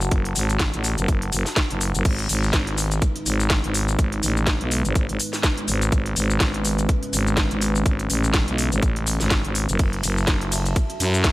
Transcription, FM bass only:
0.12 0.34 F#1 loud
0.36 0.71 G#1 loud
0.74 0.96 A1 loud
0.98 1.07 F#1 loud
1.08 1.31 F#1 loud
1.32 1.44 F#1 loud
1.70 1.92 F#1 medium
1.95 2.03 F#1 medium
2.05 2.28 G#1 loud
2.29 2.52 G#1 loud
3.26 3.62 G#1 loud
3.64 3.97 G#1 loud
4.23 4.58 A1 loud
4.61 4.83 B1 loud
4.85 4.94 G#1 medium
4.95 5.07 G#1 loud
5.09 5.18 G#1 loud
5.68 5.90 G#1 loud
5.92 6.15 G#1 loud
6.16 6.39 G#1 loud
7.13 7.49 G#1 loud
7.51 7.84 G#1 loud
7.86 8.08 G#1 loud
8.10 8.46 A1 loud
8.48 8.70 B1 loud
8.72 8.81 G#1 loud
9.21 9.42 G#1 medium
9.45 9.67 G#1 medium
9.69 9.78 F#1 medium
9.79 10.02 F#1 loud
10.03 10.26 F#1 loud
11.00 11.32 F#2 loud

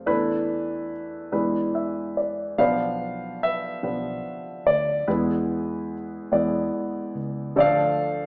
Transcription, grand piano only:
0.00 1.30 A4 soft
0.00 1.71 D5 medium
0.06 1.29 E2 medium
0.06 1.29 E3 medium
0.06 0.93 A3 medium
0.06 0.92 D4 medium
0.06 0.93 E4 medium
0.06 0.93 B4 medium
1.32 2.55 E2 medium
1.32 2.55 E3 medium
1.32 2.19 G#3 medium
1.32 2.19 D4 medium
1.32 2.19 E4 soft
1.32 2.19 B4 medium
1.75 2.14 E5 medium
2.17 2.56 D5 soft
2.58 5.05 B1 soft
2.58 5.05 B2 soft
2.58 3.44 F3 medium
2.58 3.44 B3 soft
2.58 3.44 D4 medium
2.58 3.44 B4 medium
2.58 3.81 D5 medium
2.58 3.45 F5 medium
3.43 3.82 B4 medium
3.43 4.22 E5 medium
3.83 4.69 F3 medium
3.83 4.69 B3 soft
3.83 4.69 D4 soft
3.83 4.69 B4 medium
4.67 5.05 D5 medium
5.07 7.52 E2 medium
5.07 7.53 E3 medium
5.07 5.93 G#3 medium
5.07 5.93 B3 medium
5.07 5.10 E4 medium
5.07 6.31 E4 medium
5.07 5.93 B4 medium
5.12 7.13 G#4 medium
6.32 7.17 G#3 medium
6.32 7.17 B3 medium
6.32 7.18 E4 medium
6.32 7.18 D5 medium
7.56 8.26 D2 medium
7.56 8.26 D3 medium
7.56 8.26 F3 medium
7.56 8.26 A3 medium
7.56 8.26 D4 medium
7.56 8.26 A4 medium
7.56 8.26 D5 medium
7.60 8.26 F5 loud

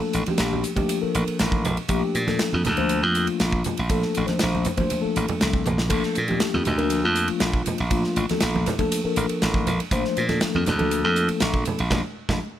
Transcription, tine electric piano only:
0.00 0.21 F3 medium
0.00 0.21 A3 medium
0.00 0.21 A#3 medium
0.00 0.21 D4 medium
0.00 0.21 A4 loud
0.27 0.70 F3 medium
0.27 0.70 A3 medium
0.27 0.70 A#3 medium
0.27 0.70 D4 medium
0.27 0.70 G4 medium
0.76 0.98 F3 medium
0.76 0.98 A3 medium
0.76 0.98 A#3 medium
0.76 0.98 D4 medium
0.76 0.98 G4 medium
1.01 1.77 F3 medium
1.01 1.77 A#3 medium
1.01 1.77 D4 medium
1.01 1.77 A4 medium
1.01 1.77 A#4 medium
1.88 2.22 F3 medium
1.88 2.21 A3 medium
1.88 2.21 A#3 medium
1.88 2.22 D4 medium
1.88 2.22 G4 loud
2.27 2.70 F3 medium
2.27 2.70 A3 medium
2.27 2.70 A#3 medium
2.27 2.70 D4 medium
2.27 2.70 A4 medium
2.77 2.99 F3 medium
2.77 2.99 A3 medium
2.77 2.99 A#3 medium
2.77 2.99 D4 medium
2.77 2.99 C5 medium
3.02 3.78 F3 medium
3.02 3.78 A3 medium
3.02 3.78 F4 medium
3.90 4.23 F3 medium
3.90 4.23 A3 medium
3.90 4.22 A#3 medium
3.90 4.23 D4 medium
3.90 4.23 A4 loud
4.26 4.70 F3 medium
4.26 4.70 A3 medium
4.26 4.70 A#3 medium
4.26 4.70 D4 medium
4.26 4.70 C5 medium
4.77 4.99 F3 medium
4.77 4.99 A3 medium
4.77 5.00 A#3 medium
4.77 4.99 D4 medium
4.77 4.99 C5 medium
5.01 5.77 F3 medium
5.01 5.78 A3 medium
5.01 5.78 A#3 medium
5.01 5.78 D4 medium
5.01 5.78 A4 medium
5.89 6.22 F3 medium
5.89 6.22 A3 medium
5.89 6.22 A#3 medium
5.89 6.22 D4 medium
5.89 6.23 A4 medium
6.27 6.71 F3 medium
6.27 6.71 A3 medium
6.27 6.71 A#3 medium
6.27 6.71 D4 medium
6.27 6.71 G4 medium
6.78 7.00 F3 medium
6.78 7.00 A3 medium
6.78 7.00 A#3 medium
6.78 7.00 D4 medium
6.78 7.00 A#4 medium
7.03 7.79 F3 medium
7.03 7.79 A3 medium
7.03 7.79 A#3 medium
7.03 7.79 D4 medium
7.03 7.79 F4 medium
7.90 8.23 F3 medium
7.90 8.23 A3 medium
7.90 8.24 A#3 medium
7.90 8.24 D4 medium
7.90 8.24 F4 loud
8.30 8.72 F3 medium
8.30 8.72 A3 medium
8.30 8.73 A#3 medium
8.30 8.73 D4 medium
8.30 8.73 A4 medium
8.78 9.00 F3 medium
8.78 9.00 A3 medium
8.78 9.00 A#3 medium
8.78 9.01 D4 medium
8.78 9.00 A4 loud
9.04 9.79 F3 medium
9.04 9.80 A#3 medium
9.04 9.80 D4 medium
9.04 9.79 A4 medium
9.04 9.80 A#4 medium
9.92 10.24 F3 medium
9.92 10.24 A3 medium
9.92 10.24 A#3 medium
9.92 10.24 D4 medium
9.92 10.24 C5 loud
10.29 10.72 F3 medium
10.29 10.72 A3 medium
10.29 10.72 A#3 medium
10.29 10.72 D4 medium
10.29 10.72 A4 medium
10.78 11.00 F3 medium
10.78 11.00 A3 medium
10.78 11.00 A#3 medium
10.78 11.00 D4 medium
10.78 11.00 A4 loud
11.04 11.79 F3 medium
11.04 11.79 A3 medium
11.04 11.79 A#3 medium
11.04 11.79 D4 medium
11.04 11.80 A4 medium
11.92 12.00 A3 medium
11.92 12.00 A#3 medium
11.92 12.00 D4 medium
12.29 12.37 A3 medium
12.29 12.38 A#3 medium
12.29 12.37 D4 medium

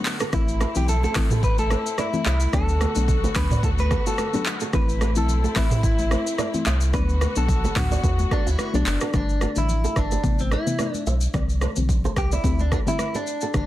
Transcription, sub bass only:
0.33 0.66 A1 loud
0.76 1.06 B1 medium
1.16 1.37 A1 loud
1.43 1.76 A1 loud
2.26 2.47 C2 medium
2.53 2.86 D2 loud
2.96 3.27 B1 medium
3.36 3.57 D2 loud
3.63 3.96 D2 loud
4.73 5.18 A1 loud
5.16 5.47 B1 medium
5.56 5.77 A1 loud
5.83 6.16 A1 loud
6.66 6.95 C2 medium
6.94 7.26 D2 loud
7.36 7.67 B1 medium
7.76 7.97 D2 medium
8.04 8.25 E2 loud
8.46 8.56 D2 medium
8.74 8.83 B1 medium
8.86 8.98 F#1 loud
9.14 9.46 G1 loud
9.56 9.87 A1 medium
9.96 10.17 G1 medium
10.24 10.56 A1 loud
11.06 11.28 B1 medium
11.34 11.67 C2 loud
11.77 12.07 B1 medium
12.16 12.38 C2 medium
12.44 12.77 D2 loud
13.54 13.66 G1 loud

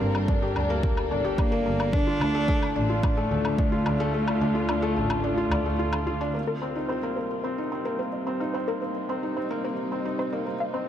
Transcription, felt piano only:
0.00 0.70 A#3 medium
0.00 0.29 D4 medium
0.00 0.42 G4 medium
0.29 0.42 D4 medium
0.42 0.55 G4 medium
0.56 0.64 D4 medium
0.70 0.82 A#3 medium
0.84 0.91 A#3 medium
1.11 1.24 D4 medium
1.25 1.38 G4 medium
1.39 1.46 D4 medium
1.52 1.64 A#3 medium
1.66 1.74 A#3 medium
1.93 2.06 D4 medium
2.07 2.20 F4 medium
2.21 2.29 D4 medium
2.35 2.47 A3 medium
2.49 2.56 A3 medium
2.76 2.89 D4 medium
2.90 3.03 F4 medium
3.03 3.11 D4 medium
3.17 3.29 A3 medium
3.31 3.39 A3 medium
3.58 3.72 D4 medium
3.72 3.85 F4 medium
3.86 3.94 D4 medium
4.00 4.12 A3 loud
4.14 4.22 A3 medium
4.41 4.54 D4 medium
4.55 4.68 F4 medium
4.68 4.76 D4 medium
4.82 4.94 A3 loud
4.96 5.04 A3 medium
5.24 5.37 D4 medium
5.37 5.51 F4 medium
5.51 5.64 D5 medium
5.65 5.73 A3 medium
5.79 5.87 F4 medium
6.07 6.20 F4 medium
6.21 6.28 D4 medium
6.34 6.42 A#3 medium
6.62 6.75 C4 medium
6.75 6.88 D#4 medium
6.89 6.97 C4 medium
7.03 7.15 A#3 medium
7.17 7.24 A#3 medium
7.44 7.57 C4 medium
7.58 7.71 D#4 medium
7.72 7.80 C4 medium
7.85 7.97 A#3 medium
7.99 8.07 A#3 medium
8.27 8.40 C4 medium
8.41 8.54 D#4 medium
8.54 8.62 C4 medium
8.68 8.80 A#3 medium
8.82 8.89 A#3 medium
9.09 9.22 C4 medium
9.23 9.36 D#4 medium
9.37 9.45 C4 medium
9.50 9.63 A#3 medium
9.64 9.72 A#3 medium
9.92 10.05 C4 medium
10.05 10.19 D#4 medium
10.19 10.27 C4 medium
10.33 10.45 A#3 medium
10.46 10.54 A#3 medium
10.74 10.87 C4 medium

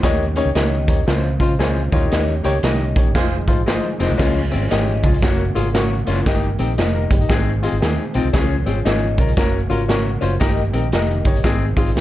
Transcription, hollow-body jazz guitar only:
0.03 0.25 D#4 medium
0.36 0.49 C#4 medium
0.55 1.04 D#4 medium
1.40 1.53 F4 loud
1.59 1.81 G#4 medium
1.93 2.05 F4 medium
2.12 2.33 D#4 medium
2.45 2.57 G4 medium
2.64 3.12 D#4 medium
3.48 3.61 F4 medium
4.00 4.13 C4 medium
4.19 4.41 C#4 medium
4.52 4.64 C4 medium
4.71 5.20 D#4 medium
5.55 5.68 F4 medium
5.75 5.97 F#4 medium
6.07 6.20 F4 medium
6.26 6.49 D#4 medium
6.59 6.72 C4 medium
6.78 7.27 D#4 medium
7.63 7.76 F4 medium
8.15 8.28 C4 medium
8.34 8.56 C#4 medium
8.66 8.79 C4 medium
8.85 9.34 D#4 loud
9.70 9.83 F4 loud
9.89 10.11 F#4 medium
10.22 10.35 F4 medium
10.41 10.63 D#4 medium
10.73 10.86 C4 medium
10.93 11.42 D#4 medium
11.77 11.90 F4 medium

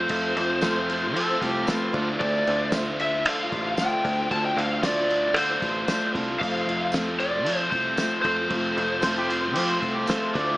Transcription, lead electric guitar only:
0.00 1.92 C5 medium
2.20 2.69 D5 loud
3.01 3.27 E5 medium
3.27 3.80 F5 loud
3.78 4.27 G5 medium
4.31 4.43 A5 loud
4.45 4.58 G5 medium
4.57 4.83 F5 loud
4.83 5.32 D5 loud
5.37 6.11 C5 medium
6.39 6.89 F5 loud
7.20 7.68 D5 loud
7.70 8.21 C5 loud
8.22 10.30 C5 medium

